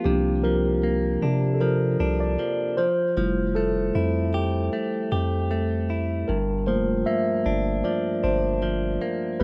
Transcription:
0.00 0.44 G3 medium
0.00 0.14 B3 medium
0.00 1.22 F4 medium
0.00 0.14 A4 medium
0.05 1.18 C2 loud
0.05 2.87 C3 medium
0.05 2.74 F3 medium
0.05 2.75 A#3 medium
0.05 2.75 D4 medium
0.05 0.41 G4 medium
0.43 1.61 F3 medium
0.43 1.18 A#4 loud
0.83 2.87 A#3 medium
1.22 1.97 C3 loud
1.22 1.99 D4 medium
1.54 1.61 A4 medium
1.60 2.39 F3 medium
1.60 2.23 A#4 medium
2.00 2.38 C2 loud
2.00 2.87 D4 medium
2.20 2.80 D5 loud
2.39 2.78 F3 medium
2.77 3.17 F3 medium
2.77 3.58 C5 loud
3.17 3.92 F1 loud
3.17 6.32 F3 medium
3.17 4.30 G3 medium
3.17 4.30 A3 soft
3.17 4.31 E4 medium
3.55 4.72 A3 medium
3.55 5.08 A4 medium
3.95 4.70 F2 loud
3.95 5.89 E4 medium
4.34 5.12 G4 medium
4.73 5.50 A3 medium
5.12 6.25 F2 loud
5.12 6.71 G4 medium
5.51 6.37 A3 medium
5.90 6.37 E4 medium
6.28 6.70 G1 loud
6.28 9.41 G2 medium
6.28 6.69 A#4 medium
6.67 7.05 F1 medium
6.67 7.84 F3 medium
6.67 7.21 A3 medium
6.67 7.21 A#3 soft
6.67 7.21 F4 medium
6.67 7.08 C5 medium
7.06 9.00 A#3 medium
7.06 7.87 E5 loud
7.46 7.83 G1 loud
7.46 8.23 D4 medium
7.84 8.62 F3 medium
7.84 8.21 D5 medium
8.23 8.99 G1 loud
8.23 9.44 D4 medium
8.23 8.98 C5 medium
8.62 9.40 F3 medium
9.02 9.44 A#3 medium
9.40 9.44 B4 loud

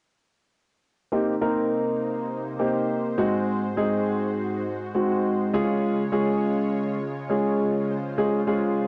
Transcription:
1.12 3.16 C3 medium
1.12 1.33 A#3 medium
1.12 3.16 A#3 medium
1.12 1.33 C4 medium
1.12 1.33 D#4 medium
1.12 3.16 D#4 medium
1.12 1.33 G4 medium
1.12 5.50 C5 medium
1.41 2.25 A#3 medium
1.41 2.25 C4 medium
1.41 2.25 D#4 medium
1.41 2.25 A#4 medium
2.59 3.18 A#3 medium
2.59 3.16 C4 medium
2.59 3.17 D#4 medium
2.59 3.18 G4 medium
3.18 5.51 G#2 medium
3.18 3.65 G#3 medium
3.18 8.87 G#3 medium
3.18 3.65 C4 medium
3.18 3.65 D#4 medium
3.18 3.65 F#4 medium
3.18 5.51 F#4 medium
3.77 4.60 G#3 medium
3.77 4.60 C4 medium
3.77 4.60 D#4 medium
3.77 4.60 G#4 medium
4.95 5.52 G#3 medium
4.95 5.54 C4 medium
4.95 5.54 D#4 medium
4.95 5.54 F#4 medium
5.53 8.87 C#3 medium
5.53 6.01 G#3 medium
5.53 6.01 C#4 medium
5.53 6.01 F4 medium
5.53 8.87 F4 medium
5.53 6.01 G#4 medium
5.53 7.87 C#5 medium
6.12 6.95 G#3 medium
6.12 6.95 C#4 medium
6.12 6.95 F4 medium
6.12 6.96 G#4 medium
7.29 7.92 G#3 medium
7.29 7.92 C#4 medium
7.29 7.92 F4 medium
7.29 7.92 G#4 medium
7.89 8.87 C5 medium
8.18 8.39 G#3 medium
8.18 8.39 C#4 medium
8.18 8.39 F4 medium
8.18 8.39 G#4 medium
8.47 8.87 G#3 medium
8.47 8.87 C#4 medium
8.47 8.87 F4 medium
8.47 8.87 G#4 medium

